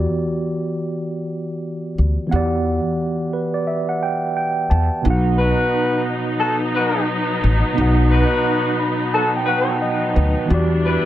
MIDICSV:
0, 0, Header, 1, 5, 480
1, 0, Start_track
1, 0, Tempo, 681818
1, 1630, Time_signature, 4, 2, 24, 8
1, 7781, End_track
2, 0, Start_track
2, 0, Title_t, "Tine electric piano"
2, 0, Program_c, 0, 4
2, 0, Control_c, 0, 64, 127
2, 0, Note_on_c, 0, 52, 74
2, 0, Note_on_c, 0, 59, 64
2, 0, Note_on_c, 0, 66, 67
2, 0, Note_on_c, 0, 67, 71
2, 0, Note_on_c, 0, 74, 81
2, 1587, Note_off_c, 0, 52, 0
2, 1595, Note_off_c, 0, 59, 0
2, 1597, Note_on_c, 0, 52, 78
2, 1603, Note_off_c, 0, 66, 0
2, 1611, Note_off_c, 0, 67, 0
2, 1613, Note_on_c, 0, 59, 69
2, 1619, Note_off_c, 0, 74, 0
2, 1629, Note_on_c, 0, 78, 71
2, 1644, Note_on_c, 0, 67, 70
2, 1660, Note_on_c, 0, 74, 87
2, 2347, Note_on_c, 0, 71, 72
2, 2484, Note_off_c, 0, 74, 0
2, 2489, Note_off_c, 0, 71, 0
2, 2493, Note_on_c, 0, 74, 69
2, 2579, Note_off_c, 0, 74, 0
2, 2585, Note_on_c, 0, 76, 67
2, 2728, Note_off_c, 0, 76, 0
2, 2729, Note_off_c, 0, 78, 0
2, 2738, Note_on_c, 0, 78, 68
2, 2822, Note_off_c, 0, 78, 0
2, 2835, Note_on_c, 0, 79, 73
2, 3056, Note_off_c, 0, 79, 0
2, 3073, Note_on_c, 0, 79, 69
2, 3295, Note_off_c, 0, 79, 0
2, 3309, Note_on_c, 0, 81, 68
2, 3505, Note_off_c, 0, 52, 0
2, 3514, Note_off_c, 0, 59, 0
2, 3529, Note_off_c, 0, 67, 0
2, 3531, Note_on_c, 0, 47, 80
2, 3533, Note_off_c, 0, 81, 0
2, 3546, Note_on_c, 0, 59, 76
2, 3560, Control_c, 0, 64, 0
2, 3561, Note_on_c, 0, 63, 74
2, 3577, Note_on_c, 0, 66, 74
2, 3592, Note_on_c, 0, 78, 91
2, 3686, Control_c, 0, 64, 127
2, 5432, Note_off_c, 0, 47, 0
2, 5440, Note_off_c, 0, 59, 0
2, 5440, Note_on_c, 0, 47, 83
2, 5448, Note_off_c, 0, 63, 0
2, 5455, Note_on_c, 0, 59, 72
2, 5456, Note_off_c, 0, 66, 0
2, 5463, Note_off_c, 0, 78, 0
2, 5471, Note_on_c, 0, 63, 75
2, 5487, Note_on_c, 0, 66, 73
2, 5502, Note_on_c, 0, 78, 83
2, 6190, Note_on_c, 0, 83, 72
2, 6413, Note_off_c, 0, 83, 0
2, 6434, Note_on_c, 0, 81, 78
2, 6573, Note_off_c, 0, 81, 0
2, 6590, Note_on_c, 0, 79, 70
2, 6665, Note_off_c, 0, 78, 0
2, 6669, Note_off_c, 0, 79, 0
2, 6674, Note_on_c, 0, 78, 73
2, 6895, Note_off_c, 0, 78, 0
2, 6912, Note_on_c, 0, 75, 77
2, 7134, Note_off_c, 0, 75, 0
2, 7151, Note_on_c, 0, 71, 71
2, 7347, Note_off_c, 0, 47, 0
2, 7354, Note_off_c, 0, 59, 0
2, 7360, Note_on_c, 0, 52, 78
2, 7362, Note_off_c, 0, 63, 0
2, 7370, Note_off_c, 0, 66, 0
2, 7374, Note_off_c, 0, 71, 0
2, 7376, Note_on_c, 0, 59, 68
2, 7390, Note_on_c, 0, 66, 71
2, 7400, Control_c, 0, 64, 0
2, 7406, Note_on_c, 0, 67, 73
2, 7421, Note_on_c, 0, 74, 88
2, 7537, Control_c, 0, 64, 127
2, 7781, Note_off_c, 0, 52, 0
2, 7781, Note_off_c, 0, 59, 0
2, 7781, Note_off_c, 0, 66, 0
2, 7781, Note_off_c, 0, 67, 0
2, 7781, Note_off_c, 0, 74, 0
2, 7781, End_track
3, 0, Start_track
3, 0, Title_t, "Horn section"
3, 0, Program_c, 1, 61
3, 3793, Note_on_c, 1, 66, 83
3, 3793, Note_on_c, 1, 71, 103
3, 3794, Note_on_c, 1, 63, 88
3, 4244, Note_off_c, 1, 63, 0
3, 4244, Note_off_c, 1, 66, 0
3, 4244, Note_off_c, 1, 71, 0
3, 4507, Note_on_c, 1, 63, 90
3, 4507, Note_on_c, 1, 69, 102
3, 4508, Note_on_c, 1, 66, 84
3, 4620, Note_off_c, 1, 63, 0
3, 4620, Note_off_c, 1, 66, 0
3, 4620, Note_off_c, 1, 69, 0
3, 4754, Note_on_c, 1, 63, 79
3, 4754, Note_on_c, 1, 66, 82
3, 4754, Note_on_c, 1, 71, 92
3, 4944, Note_off_c, 1, 63, 0
3, 4944, Note_off_c, 1, 66, 0
3, 4944, Note_off_c, 1, 71, 0
3, 5715, Note_on_c, 1, 71, 105
3, 5716, Note_on_c, 1, 63, 91
3, 5716, Note_on_c, 1, 66, 89
3, 6165, Note_off_c, 1, 63, 0
3, 6165, Note_off_c, 1, 66, 0
3, 6165, Note_off_c, 1, 71, 0
3, 6438, Note_on_c, 1, 63, 85
3, 6438, Note_on_c, 1, 66, 92
3, 6438, Note_on_c, 1, 69, 103
3, 6550, Note_off_c, 1, 69, 0
3, 6551, Note_off_c, 1, 63, 0
3, 6551, Note_off_c, 1, 66, 0
3, 6662, Note_on_c, 1, 63, 73
3, 6662, Note_on_c, 1, 71, 89
3, 6663, Note_on_c, 1, 66, 83
3, 6857, Note_off_c, 1, 71, 0
3, 6858, Note_off_c, 1, 63, 0
3, 6858, Note_off_c, 1, 66, 0
3, 7638, Note_on_c, 1, 64, 89
3, 7638, Note_on_c, 1, 67, 81
3, 7638, Note_on_c, 1, 71, 97
3, 7781, Note_off_c, 1, 64, 0
3, 7781, Note_off_c, 1, 67, 0
3, 7781, Note_off_c, 1, 71, 0
3, 7781, End_track
4, 0, Start_track
4, 0, Title_t, "String section"
4, 0, Program_c, 2, 48
4, 3558, Note_on_c, 2, 54, 73
4, 3558, Note_on_c, 2, 59, 64
4, 3559, Note_on_c, 2, 63, 92
4, 7366, Note_off_c, 2, 54, 0
4, 7366, Note_off_c, 2, 59, 0
4, 7367, Note_off_c, 2, 63, 0
4, 7388, Note_on_c, 2, 52, 75
4, 7388, Note_on_c, 2, 55, 86
4, 7388, Note_on_c, 2, 62, 78
4, 7781, Note_off_c, 2, 52, 0
4, 7781, Note_off_c, 2, 55, 0
4, 7781, Note_off_c, 2, 62, 0
4, 7781, End_track
5, 0, Start_track
5, 0, Title_t, "Upright bass"
5, 0, Program_c, 3, 32
5, 1396, Note_on_c, 3, 38, 87
5, 1517, Note_off_c, 3, 38, 0
5, 1636, Note_on_c, 3, 40, 108
5, 1953, Note_off_c, 3, 40, 0
5, 3315, Note_on_c, 3, 40, 99
5, 3437, Note_off_c, 3, 40, 0
5, 3555, Note_on_c, 3, 35, 112
5, 3872, Note_off_c, 3, 35, 0
5, 5236, Note_on_c, 3, 33, 96
5, 5357, Note_off_c, 3, 33, 0
5, 5476, Note_on_c, 3, 35, 104
5, 5793, Note_off_c, 3, 35, 0
5, 7154, Note_on_c, 3, 38, 94
5, 7276, Note_off_c, 3, 38, 0
5, 7395, Note_on_c, 3, 40, 113
5, 7712, Note_off_c, 3, 40, 0
5, 7781, End_track
0, 0, End_of_file